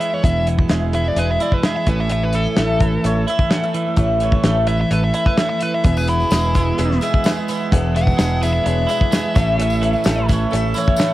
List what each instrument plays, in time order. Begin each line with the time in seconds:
Already playing: twelve-string acoustic guitar E3 G#3 B3 E4, clean electric guitar G#3 E4
0.00 clean electric guitar E3, lead electric guitar E5, closed hi-hat
0.12 twelve-string acoustic guitar E3 G#3 B3 E4, lead electric guitar C#5
0.22 fingered electric bass E1, twelve-string acoustic guitar E2 B2 E3 G#3 B3 E4, lead electric guitar E5, kick, closed hi-hat
0.47 clean electric guitar B2, closed hi-hat
0.58 twelve-string acoustic guitar E3 G#3 B3 E4, kick
0.68 fingered electric bass E1, twelve-string acoustic guitar E2 B2 E3 G#3 B3 E4, snare, closed hi-hat
0.81 twelve-string acoustic guitar E3 G#3 B3 E4
0.92 twelve-string acoustic guitar E3 G#3 B3 E4, lead electric guitar E5, closed hi-hat
1.04 twelve-string acoustic guitar E3 G#3 B3 E4, lead electric guitar D5
1.16 fingered electric bass E1, clean electric guitar G#3, lead electric guitar B4, closed hi-hat
1.27 twelve-string acoustic guitar E3 G#3 B3 E4, lead electric guitar E5
1.40 twelve-string acoustic guitar E3 G#3 B3 E4, lead electric guitar D5, closed hi-hat
1.52 lead electric guitar B4, kick
1.63 twelve-string acoustic guitar E2 B2 E3 G#3 B3 E4, lead electric guitar E5, snare, closed hi-hat
1.76 twelve-string acoustic guitar E3 G#3 B3 E4, lead electric guitar E5
1.87 fingered electric bass A1, twelve-string acoustic guitar A2 E3 A3 C#4 E4, lead electric guitar B4, kick, closed hi-hat
2.00 lead electric guitar E5
2.10 clean electric guitar A2, lead electric guitar E5, closed hi-hat
2.23 lead electric guitar B4
2.33 clean electric guitar E3, lead electric guitar A4, closed hi-hat
2.44 twelve-string acoustic guitar A3 C#4 E4
2.57 fingered electric bass A1, twelve-string acoustic guitar A2 E3 A3 C#4 E4, snare, closed hi-hat
2.79 twelve-string acoustic guitar E3 A3 C#4 E4, kick, closed hi-hat
2.92 twelve-string acoustic guitar A3 C#4 E4
3.04 fingered electric bass A1, clean electric guitar A3, mandolin C#5, closed hi-hat
3.15 twelve-string acoustic guitar A3 C#4 E4
3.27 twelve-string acoustic guitar E3 A3 C#4 E4, mandolin E5, closed hi-hat
3.39 kick
3.51 twelve-string acoustic guitar A2 E3 A3 C#4 E4, mandolin F#5, snare, closed hi-hat
3.62 twelve-string acoustic guitar A3 C#4 E4, mandolin E5
3.74 clean electric guitar E3, closed hi-hat
3.86 twelve-string acoustic guitar A3 C#4 E4
3.97 fingered electric bass A1, twelve-string acoustic guitar A2 E3 A3 C#4 E4, kick, closed hi-hat
4.20 clean electric guitar E3, mandolin C#5, closed hi-hat
4.32 twelve-string acoustic guitar A3 C#4 E4, kick
4.44 fingered electric bass A1, twelve-string acoustic guitar A2 E3 A3 C#4 E4, snare, closed hi-hat
4.67 twelve-string acoustic guitar E3 A3 C#4 E4, lead electric guitar E5, closed hi-hat
4.79 twelve-string acoustic guitar A3 C#4 E4, lead electric guitar E5
4.91 fingered electric bass A1, clean electric guitar A3, lead electric guitar B4, closed hi-hat
5.02 twelve-string acoustic guitar A3 C#4 E4, lead electric guitar E5
5.14 twelve-string acoustic guitar E3 A3 C#4 E4, lead electric guitar E5, closed hi-hat
5.26 lead electric guitar B4, kick
5.37 twelve-string acoustic guitar A2 E3 A3 C#4 E4, lead electric guitar E5, snare, closed hi-hat
5.50 twelve-string acoustic guitar A3 C#4 E4, lead electric guitar E5
5.61 clean electric guitar E3, lead electric guitar B4, closed hi-hat
5.73 twelve-string acoustic guitar A3 C#4 E4, lead electric guitar E5
5.83 fingered electric bass E1, twelve-string acoustic guitar E2 B2 E3 G#3 B3 E4, harmonium B3 G#4 E5, grand piano G#4 B4 E5, lead electric guitar E5, kick, closed hi-hat
5.97 lead electric guitar B4, tambourine
6.08 clean electric guitar B2, lead electric guitar E4, grand piano G#4 B4 E5, closed hi-hat, tambourine
6.20 twelve-string acoustic guitar E3 G#3 B3 E4, tambourine
6.30 fingered electric bass E1, twelve-string acoustic guitar E2 B2 E3 G#3 B3 E4, grand piano G#4 B4 E5, snare, closed hi-hat, tambourine
6.54 twelve-string acoustic guitar E3 G#3 B3 E4, kick, closed hi-hat, tambourine
6.77 fingered electric bass E1, clean electric guitar G#3, grand piano G#4 B4 E5, mandolin G#4 E5, closed hi-hat, tambourine
6.89 twelve-string acoustic guitar E3 G#3 B3 E4, snare
7.01 twelve-string acoustic guitar E3 G#3 B3 E4, mandolin G#4 E5, closed hi-hat, tambourine
7.14 kick
7.24 twelve-string acoustic guitar E2 B2 E3 G#3 B3 E4, grand piano G#4 B4 E5, mandolin G#4 E5, snare, closed hi-hat, tambourine
7.37 twelve-string acoustic guitar E3 G#3 B3 E4
7.48 clean electric guitar E3, mandolin E5, closed hi-hat, tambourine
7.61 twelve-string acoustic guitar E3 G#3 B3 E4
7.69 fingered electric bass E1, twelve-string acoustic guitar E2 B2 E3 G#3 B3 E4, harmonium D4, grand piano G#4 B4 F#5, kick, closed hi-hat
7.94 clean electric guitar B2, grand piano G#4 B4 E5, lead electric guitar F#5, closed hi-hat, tambourine
8.07 twelve-string acoustic guitar E3 G#3 B3 E4, kick, tambourine
8.18 fingered electric bass E1, twelve-string acoustic guitar E2 B2 E3 G#3 B3 E4, grand piano G#4 B4 E5, snare, closed hi-hat, tambourine
8.42 twelve-string acoustic guitar E3 G#3 B3 E4, lead electric guitar E5, closed hi-hat, tambourine
8.53 twelve-string acoustic guitar E3 G#3 B3 E4, lead electric guitar E5
8.64 fingered electric bass E1, clean electric guitar G#3, grand piano G#4 B4 C#5, lead electric guitar E5, closed hi-hat, tambourine
8.77 twelve-string acoustic guitar E3 G#3 B3 E4
8.88 twelve-string acoustic guitar E3 G#3 B3 E4, lead electric guitar E5, closed hi-hat, tambourine
9.01 kick
9.11 twelve-string acoustic guitar E2 B2 E3 G#3 B3 E4, grand piano G#4 B4 E5, snare, closed hi-hat, tambourine
9.24 twelve-string acoustic guitar E3 G#3 B3 E4
9.34 fingered electric bass A1, twelve-string acoustic guitar A2 E3 A3 C#4 E4, harmonium C#4 A4 E5, grand piano A4 C#5 E5, kick, closed hi-hat, tambourine
9.58 clean electric guitar A2, mandolin E5, closed hi-hat
9.70 tambourine
9.81 clean electric guitar E3, grand piano A4 C#5 E5, closed hi-hat, tambourine
9.93 twelve-string acoustic guitar A3 C#4 E4, tambourine
10.04 fingered electric bass A1, twelve-string acoustic guitar A2 E3 A3 C#4 E4, grand piano A4 C#5 E5, snare, closed hi-hat, tambourine
10.18 twelve-string acoustic guitar A3 C#4 E4
10.29 twelve-string acoustic guitar E3 A3 C#4 E4, kick, closed hi-hat, tambourine
10.33 mandolin C#5
10.51 fingered electric bass A1, clean electric guitar A3, grand piano A4 C#5 E5, closed hi-hat, tambourine
10.55 mandolin E5
10.65 twelve-string acoustic guitar A3 C#4 E4
10.74 twelve-string acoustic guitar E3 A3 C#4 E4, mandolin C#5, closed hi-hat, tambourine
10.88 kick
10.96 twelve-string acoustic guitar A2 E3 A3 C#4 E4, grand piano A4 C#5 E5, snare, closed hi-hat, tambourine